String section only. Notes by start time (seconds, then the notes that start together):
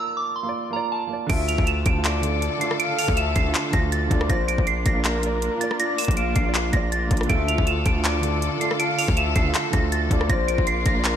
1.30 D3 D4 F4 A4
4.30 A#3
7.30 D3 A4
10.29 A#3 D4 F4